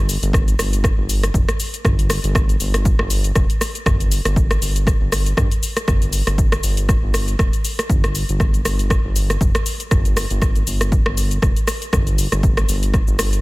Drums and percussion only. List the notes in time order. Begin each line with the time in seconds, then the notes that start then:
0.09 open hi-hat, shaker
0.23 closed hi-hat, shaker
0.33 kick, cross-stick, shaker
0.48 closed hi-hat, shaker
0.59 cross-stick, open hi-hat, shaker
0.73 closed hi-hat, shaker
0.84 kick, cross-stick, shaker
1.09 open hi-hat, shaker
1.23 cross-stick, closed hi-hat, shaker
1.34 kick, mid tom, shaker
1.49 cross-stick, closed hi-hat, shaker
1.60 open hi-hat, shaker
1.74 closed hi-hat, shaker
1.85 kick, cross-stick, mid tom, shaker
1.99 closed hi-hat, shaker
2.10 cross-stick, open hi-hat, shaker
2.24 closed hi-hat, shaker
2.35 kick, cross-stick, shaker
2.49 closed hi-hat, shaker
2.60 open hi-hat, shaker
2.74 cross-stick, closed hi-hat, shaker
2.85 kick, shaker
2.99 cross-stick
3.10 open hi-hat, shaker
3.24 closed hi-hat, shaker
3.35 kick, cross-stick, shaker
3.50 closed hi-hat, shaker
3.61 cross-stick, open hi-hat, shaker
3.75 closed hi-hat, shaker
3.86 kick, cross-stick, mid tom, shaker
4.00 closed hi-hat, shaker
4.12 open hi-hat, shaker
4.25 cross-stick, closed hi-hat, shaker
4.36 kick, shaker
4.51 cross-stick, closed hi-hat, shaker
4.62 open hi-hat, shaker
4.76 closed hi-hat, shaker
4.87 kick, cross-stick, shaker
5.12 cross-stick, open hi-hat, shaker
5.26 closed hi-hat, shaker
5.37 kick, cross-stick, mid tom, shaker
5.51 closed hi-hat, shaker
5.63 open hi-hat, shaker
5.77 cross-stick, closed hi-hat, shaker
5.88 kick, cross-stick, mid tom, shaker
6.02 closed hi-hat, shaker
6.13 open hi-hat, shaker
6.27 cross-stick, closed hi-hat, shaker
6.38 kick, shaker
6.52 cross-stick, closed hi-hat, shaker
6.63 open hi-hat, shaker
6.77 closed hi-hat, shaker
6.89 kick, cross-stick, shaker
7.14 cross-stick, open hi-hat, shaker
7.28 closed hi-hat, shaker
7.39 kick, cross-stick, shaker
7.53 closed hi-hat, shaker
7.65 open hi-hat, shaker
7.79 cross-stick, closed hi-hat, shaker
7.90 kick, mid tom, shaker
8.04 cross-stick, closed hi-hat, shaker
8.15 open hi-hat, shaker
8.29 closed hi-hat, shaker
8.40 kick, cross-stick, shaker
8.54 closed hi-hat, shaker
8.65 cross-stick, open hi-hat, shaker
8.79 closed hi-hat, shaker
8.90 kick, cross-stick, shaker
9.16 open hi-hat, shaker
9.30 cross-stick, closed hi-hat, shaker
9.41 kick, mid tom, shaker
9.55 cross-stick, closed hi-hat, shaker
9.66 open hi-hat, shaker
9.80 closed hi-hat, shaker
9.91 kick, cross-stick, mid tom, shaker
10.05 closed hi-hat, shaker
10.17 cross-stick, open hi-hat, shaker
10.30 closed hi-hat, shaker
10.42 kick, cross-stick, shaker
10.55 closed hi-hat, shaker
10.67 open hi-hat, shaker
10.81 cross-stick, closed hi-hat, shaker
10.92 kick, shaker
11.06 cross-stick
11.17 open hi-hat, shaker
11.31 closed hi-hat, shaker
11.42 kick, cross-stick, shaker
11.56 closed hi-hat, shaker
11.67 cross-stick, open hi-hat, shaker
11.82 closed hi-hat, shaker
11.93 kick, cross-stick, mid tom, shaker
12.07 closed hi-hat, shaker
12.18 open hi-hat, shaker
12.32 cross-stick, closed hi-hat, shaker
12.43 kick, shaker
12.57 cross-stick, closed hi-hat, shaker
12.69 open hi-hat, shaker
12.83 closed hi-hat, shaker
12.94 kick, cross-stick, shaker
13.08 shaker
13.19 cross-stick, open hi-hat, shaker
13.33 closed hi-hat, shaker